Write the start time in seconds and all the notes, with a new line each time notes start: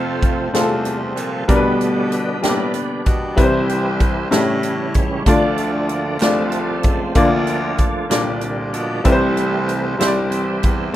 Already playing: F2 C3 F3 A3 C4 F4 C5
0.23 kick, closed hi-hat
0.53 E2 C3 G3 A3 C4 F4 G#4, snare, closed hi-hat
0.61 A4
0.85 closed hi-hat
1.15 A#2 F3 A3 C4, closed hi-hat
1.47 B2 D3 G3 A3 B3 D4 A#4, kick, closed hi-hat
1.56 B4
1.81 closed hi-hat
2.10 B3, closed hi-hat
2.42 A2 G3 A#3 B3 D4 G4, snare, closed hi-hat
2.49 B3
2.74 D3 G3 B3, closed hi-hat
3.06 B2, kick, closed hi-hat
3.36 C2 C3 E3 G3 C4 E4 B4, kick, closed hi-hat
3.44 C5
3.69 closed hi-hat
4.00 kick, closed hi-hat
4.30 A2 C#3 E3 G3 C#4 E4 A4, snare, closed hi-hat
4.63 closed hi-hat
4.94 C#2, kick, closed hi-hat
5.26 D2 D3 F3 A3 D4 F4 D5, kick, closed hi-hat
5.58 closed hi-hat
5.89 A#3, closed hi-hat
6.20 C2 F3 A3 C4 D4 F4 D5, snare, clap, closed hi-hat
6.52 closed hi-hat
6.83 C#2, kick, closed hi-hat
7.15 D2 D3 F3 A#3 D4 F4 D5, kick, closed hi-hat
7.47 closed hi-hat
7.78 A3, kick, closed hi-hat
8.09 C2 A#2 D3 G3 A#3 D4 F4 D5, snare, clap, closed hi-hat
8.41 closed hi-hat
8.73 B2 F3 A#3 D4, closed hi-hat
9.04 C2 C3 E3 G3 A3 C4 E4 B4, kick, closed hi-hat
9.12 C5
9.37 closed hi-hat
9.69 closed hi-hat
9.98 C2 G3 A#3 C4 E4 C5, snare, clap, closed hi-hat
10.07 D5
10.30 E3 G3 C4, closed hi-hat
10.63 E2, kick, closed hi-hat